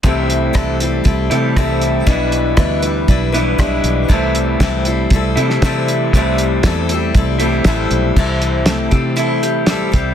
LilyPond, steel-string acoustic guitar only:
\new Staff \with { instrumentName = "Steel-string acoustic guitar" } { \time 4/4 \key c \major \tempo 4 = 118 <c e g c' e' a'>4 <c e g c' e' a'>8 <g c' e' a'>8 <g c' e' a'>8 <g c' e' a'>8 <c e g c' e' a'>4 | <b, e g d' e' b'>4 <b, e g d' e' b'>8 <g d' e' b'>8 <g d' e' b'>8 <g d' e' b'>8 <b, e g d' e' b'>4 | <c e g c' e' a'>4 <c e g c' e' a'>8 <g c' e' a'>8 <g c' e' a'>8 <g c' e' a'>8 <c e g c' e' a'>4 | <c e g c' e' a'>4 <c e g c' e' a'>8 <g c' e' a'>8 <g c' e' a'>8 <g c' e' a'>8 <c e g c' e' a'>4 |
<c e g c' e' a'>4 <g c' e' a'>8 <g c' e' a'>8 <g c' e' a'>4 <g c' e' a'>8 <g c' e' a'>8 | }